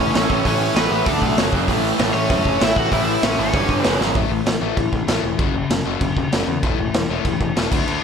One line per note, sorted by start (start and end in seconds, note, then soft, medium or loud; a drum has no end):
0.00 0.11 F#1 medium
0.00 0.13 A2 medium
0.00 0.13 E3 loud
0.00 0.14 A3 loud
0.00 0.41 C#4 medium
0.00 0.45 C#5 loud
0.13 0.25 A1 medium
0.13 0.29 A2 medium
0.13 0.29 E3 medium
0.13 0.28 A3 medium
0.13 snare loud
0.13 open hi-hat medium
0.29 0.41 A1 medium
0.29 0.43 A2 medium
0.29 0.44 E3 medium
0.29 0.45 A3 medium
0.29 kick medium
0.44 0.68 A1 medium
0.44 0.74 A2 medium
0.44 0.75 E3 loud
0.44 0.76 A3 loud
0.44 0.74 C#4 medium
0.44 0.75 C#5 medium
0.44 kick loud
0.44 open hi-hat medium
0.75 0.87 A1 loud
0.75 0.90 A2 loud
0.75 0.90 E3 medium
0.75 0.89 A3 loud
0.75 1.05 B3 medium
0.75 1.08 B4 medium
0.75 snare loud
0.75 open hi-hat medium
0.90 1.02 A1 loud
0.90 1.05 A2 medium
0.90 1.06 E3 medium
0.90 1.05 A3 loud
1.05 1.18 D2 medium
1.05 1.36 D3 loud
1.05 1.37 A3 loud
1.05 1.36 A3 medium
1.05 1.37 D4 loud
1.05 1.35 A4 medium
1.05 kick loud
1.05 open hi-hat medium
1.22 1.34 B1 medium
1.22 kick medium
1.36 1.49 F#1 medium
1.36 1.52 F#2 loud
1.36 1.52 C#3 loud
1.36 1.51 F#3 loud
1.36 snare loud
1.36 open hi-hat medium
1.52 1.64 F#1 medium
1.52 1.68 F#2 medium
1.52 1.66 C#3 medium
1.52 1.67 F#3 medium
1.52 kick medium
1.67 1.91 A1 medium
1.67 1.96 A2 loud
1.67 1.97 E3 loud
1.67 1.97 A3 loud
1.67 kick loud
1.67 open hi-hat medium
1.97 2.11 A1 medium
1.97 2.14 A2 medium
1.97 2.14 E3 medium
1.97 2.13 A3 loud
1.97 snare loud
1.97 open hi-hat medium
2.14 2.26 A1 loud
2.14 2.27 A2 medium
2.14 2.28 E3 medium
2.14 2.28 A3 loud
2.14 2.58 C#4 medium
2.14 2.62 C#5 loud
2.28 2.42 F#2 medium
2.28 2.58 A2 loud
2.28 2.59 E3 loud
2.28 2.60 A3 loud
2.28 kick loud
2.28 open hi-hat medium
2.45 2.57 F#1 medium
2.45 kick medium
2.59 2.73 A1 medium
2.59 2.76 A2 medium
2.59 2.75 E3 medium
2.59 2.74 A3 medium
2.59 2.76 E4 medium
2.59 snare loud
2.59 open hi-hat medium
2.64 2.77 E5 medium
2.75 2.88 A1 medium
2.75 2.89 A2 medium
2.75 2.90 E3 medium
2.75 2.91 A3 medium
2.75 2.91 F#4 medium
2.75 2.93 F#5 medium
2.75 kick medium
2.90 3.15 A1 medium
2.90 3.21 A2 medium
2.90 3.21 E3 loud
2.90 3.22 A3 loud
2.90 3.21 E4 medium
2.90 3.24 E5 loud
2.90 kick loud
2.90 open hi-hat medium
3.22 3.34 A1 medium
3.22 3.38 A2 loud
3.22 3.38 E3 loud
3.22 3.37 A3 loud
3.22 3.38 C#4 medium
3.22 3.40 C#5 medium
3.22 snare loud
3.22 open hi-hat medium
3.38 3.50 G#1 loud
3.38 3.53 A2 medium
3.38 3.53 E3 medium
3.38 3.53 A3 loud
3.38 3.97 C#4 medium
3.38 3.84 C#5 medium
3.53 3.65 G1 medium
3.53 3.83 G2 loud
3.53 3.84 D3 loud
3.53 3.84 G3 loud
3.53 kick loud
3.53 open hi-hat medium
3.69 3.80 G1 medium
3.69 kick medium
3.83 3.96 F#1 medium
3.83 4.00 F#2 medium
3.83 3.99 C#3 loud
3.83 3.98 F#3 loud
3.83 3.97 B4 medium
3.83 snare loud
3.83 open hi-hat medium
4.00 4.15 G#1 medium
4.00 4.15 F#2 medium
4.00 4.14 C#3 medium
4.00 4.14 F#3 medium
4.00 snare medium
4.15 4.25 A1 medium
4.15 4.30 A2 medium
4.15 4.30 E3 medium
4.15 4.31 A3 loud
4.15 kick loud
4.15 crash medium
4.30 4.40 A1 medium
4.30 4.45 A2 medium
4.30 4.45 E3 medium
4.46 4.56 A1 medium
4.46 4.60 A2 medium
4.46 4.60 E3 medium
4.46 snare loud
4.46 crash medium
4.61 4.71 A1 medium
4.61 4.76 A2 medium
4.61 4.76 E3 medium
4.61 4.77 A3 medium
4.77 4.87 A1 medium
4.77 4.91 A2 medium
4.77 4.91 E3 medium
4.77 kick loud
4.77 crash medium
4.92 5.02 A1 medium
4.92 5.06 A2 medium
4.92 5.07 E3 medium
4.92 kick medium
5.07 5.18 A1 medium
5.07 5.22 A2 medium
5.07 5.23 E3 medium
5.07 5.23 A3 loud
5.07 snare loud
5.07 crash medium
5.23 5.33 E1 medium
5.23 5.38 A2 medium
5.23 5.38 E3 medium
5.38 5.49 F#1 medium
5.38 5.53 F#2 medium
5.38 5.53 C#3 loud
5.38 5.54 F#3 loud
5.38 kick loud
5.38 crash medium
5.54 5.64 F#1 medium
5.54 5.68 F#2 medium
5.54 5.69 C#3 medium
5.70 5.80 F#1 medium
5.70 5.84 F#2 medium
5.70 5.84 C#3 medium
5.70 snare loud
5.70 crash medium
5.85 5.96 F#1 medium
5.85 6.00 F#2 medium
5.85 6.00 C#3 medium
5.85 6.00 F#3 loud
6.01 6.11 F#1 medium
6.01 6.15 F#2 medium
6.01 6.15 C#3 medium
6.01 kick loud
6.01 crash medium
6.16 6.26 E1 medium
6.16 6.31 F#2 medium
6.16 6.31 C#3 medium
6.16 kick medium
6.32 6.42 F#1 medium
6.32 6.47 F#2 medium
6.32 6.47 C#3 loud
6.32 6.48 F#3 medium
6.32 snare loud
6.32 crash medium
6.48 6.57 E2 medium
6.48 6.62 F#2 medium
6.48 6.62 C#3 medium
6.63 6.73 E1 medium
6.63 6.78 A2 medium
6.63 6.78 E3 medium
6.63 6.78 A3 loud
6.63 kick loud
6.63 crash medium
6.78 6.88 E1 medium
6.78 6.93 A2 medium
6.78 6.93 E3 medium
6.94 7.04 E1 medium
6.94 7.08 A2 medium
6.94 7.09 E3 loud
6.94 snare loud
6.94 crash medium
7.09 7.19 E1 loud
7.09 7.24 A2 loud
7.09 7.24 E3 medium
7.09 7.25 A3 loud
7.24 7.34 E1 medium
7.24 7.39 A2 medium
7.24 7.39 E3 medium
7.24 kick loud
7.24 crash medium
7.40 7.50 E1 medium
7.40 7.54 A2 medium
7.40 7.55 E3 medium
7.40 kick medium
7.56 7.66 E1 medium
7.56 7.71 A2 medium
7.56 7.71 E3 loud
7.56 7.71 A3 medium
7.56 snare loud
7.56 crash medium
7.71 7.82 D2 medium
7.71 7.85 D3 medium
7.71 7.86 A3 medium
7.71 7.87 D4 medium
7.71 kick loud
7.71 crash loud
7.87 7.97 D2 medium
7.87 8.01 D3 medium
7.87 8.01 A3 loud
7.87 8.02 D4 loud
7.87 crash medium